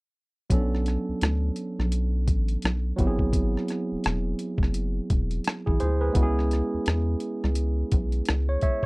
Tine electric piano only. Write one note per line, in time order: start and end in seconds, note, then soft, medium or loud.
0.50 2.93 F#3 medium
0.50 2.93 B3 soft
0.50 2.94 C#4 medium
0.50 2.95 D4 medium
0.50 2.95 A4 medium
2.96 5.75 F#3 medium
2.96 5.76 B3 medium
2.96 5.76 C4 medium
2.96 5.06 E4 medium
3.01 3.07 G4 medium
3.07 5.10 G#4 medium
5.66 5.80 E4 soft
5.66 5.79 G#4 medium
5.80 6.00 G#4 medium
5.80 6.00 C5 medium
6.01 6.22 G#4 soft
6.01 6.34 B4 medium
6.12 8.86 G#3 medium
6.12 8.86 B3 medium
6.12 8.86 C#4 medium
6.12 8.86 E4 medium
6.17 6.24 F#4 soft
6.23 8.86 G#4 medium
8.49 8.62 C#5 medium
8.63 8.83 C#5 soft
8.63 8.83 E5 medium